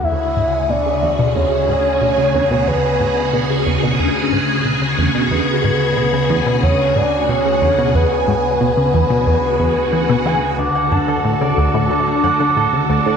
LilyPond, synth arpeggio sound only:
\new Staff \with { instrumentName = "Synth arpeggio sound" } { \clef bass \time 4/4 \key e \mixolydian \tempo 4 = 91 e,16 r16 gis,16 r16 b,16 cis16 e,16 b,16 e,16 r16 gis,16 r16 b,16 cis16 e,16 b,16 | e,16 r16 gis,16 r16 b,16 cis16 e,16 b,16 e,16 r16 gis,16 r16 b,16 cis16 e,16 b,16 | e,16 r16 gis,16 r16 b,16 cis16 e,16 b,16 e,16 r16 gis,16 r16 b,16 cis16 e,16 b,16 | e,16 r16 gis,16 r16 b,16 cis16 e,16 b,16 e,16 r16 e,16 r16 e16 b,16 e16 r16 |
d,16 r16 fis,16 d16 a,16 cis16 d,16 a,16 d,16 r16 fis,16 d16 a,16 cis16 d,16 a,16 | }